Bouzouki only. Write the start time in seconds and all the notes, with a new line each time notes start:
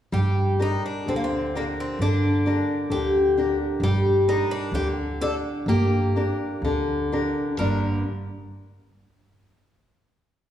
0.14 G4
0.62 D#4
0.86 D4
1.09 C4
1.16 A#3
1.24 C4
1.57 A#3
1.80 C4
2.02 D4
2.92 G4
3.84 G4
4.29 D#4
4.51 D4
4.75 G4
5.22 A4
5.69 G4
7.58 A#4